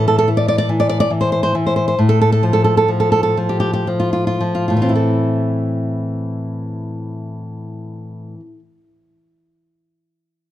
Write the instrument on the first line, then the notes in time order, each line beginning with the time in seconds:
nylon-string guitar
Already playing: A2 E3
0.08 A4
0.18 A4
0.28 E3
0.37 D5
0.48 D5
0.58 D5
0.69 E3
0.80 D5
0.89 D5
1.00 D5
1.10 E3
1.21 C5
1.32 C5
1.43 C5
1.55 E3
1.67 C5
1.76 C5
1.88 C5
1.99 A2
2.09 A4
2.21 A4
2.32 A4
2.43 F3
2.53 A4
2.64 A4
2.77 A4
2.88 F3
3.00 A4
3.12 A4
3.23 A4
3.37 F3
3.49 G4
3.60 G4
3.73 G4
3.87 F3
4.00 F4
4.13 F4
4.27 F4
4.40 F3
4.55 F4
4.68 A2 F4
4.77 E3
4.82 C4 F4
4.89 E4
4.96 A4